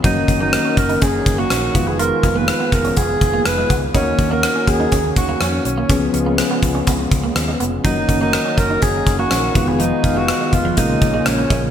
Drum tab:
HH |x-x-x-xxx-x-x-x-|x-x-x-xxx-x-x-x-|x-x-x-x-x-x-x-x-|x-x-x-x-x-x-x-x-|
SD |----r-------r---|----r-------r---|----r-------r---|----r-------r---|
BD |o-o---o-o-o---o-|--o---o-o-o---o-|o-o---o-o-o-----|o-----o-o-o-----|

HH |x-x-x-x-x-x-x-x-|x-x-x-x-x-x-x-x-|
SD |----r-------r---|----r-------r---|
BD |o-o---o-o-o---o-|--o---o-o-o---o-|